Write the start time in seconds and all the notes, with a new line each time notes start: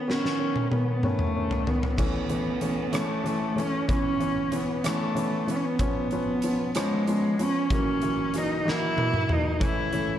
Already playing: B3
0.08 D#3 B3 C#4, snare
0.25 snare
0.39 D#3 B3 C#4
0.56 high tom
0.71 D#3 B3 C#4, high tom
1.03 D#3 A3 B3 C#4, mid tom
1.19 mid tom
1.35 D#3 B3 C#4
1.51 floor tom
1.67 D#3 B3 C#4, floor tom
1.83 floor tom
1.98 E3 A3 B3 C#4, kick, crash
2.29 E3 A3 C#4, closed hi-hat
2.61 E3 A3 C#4, closed hi-hat
2.92 E3 A3 C#4, cross-stick, closed hi-hat
2.97 A3
3.24 E3 A3 C#4, closed hi-hat
3.56 E3 A3 C#4, closed hi-hat
3.88 E3 B3 C#4, kick, closed hi-hat
4.20 E3 B3 C#4, closed hi-hat
4.52 E3 B3 C#4, closed hi-hat
4.84 E3 A3 B3 C#4, cross-stick, closed hi-hat
5.15 E3 B3 C#4, closed hi-hat
5.47 E3 B3 C#4, closed hi-hat
5.51 B3
5.56 C#4
5.65 B3
5.79 F3 B3 C#4, kick, closed hi-hat
6.11 F3 B3 C#4, closed hi-hat
6.42 F3 B3 C#4, closed hi-hat
6.75 F3 G#3 B3 C#4, cross-stick, closed hi-hat
7.07 F3 B3 C#4, closed hi-hat
7.39 F3 B3 C#4, closed hi-hat
7.43 C#4
7.70 E3 F#3 A#3, kick, closed hi-hat
7.75 C#4
8.02 E3 F#3 A#3, closed hi-hat
8.34 E3 F#3 A#3 D#4, cross-stick, closed hi-hat
8.65 E3 F#3 A#3 E4, snare
8.97 E3 F#3 A#3, high tom
9.14 mid tom
9.29 E3 F#3 A#3 D#4, mid tom
9.60 E3 A3 C#4 E4, kick, closed hi-hat
9.92 E3 A3 C#4, closed hi-hat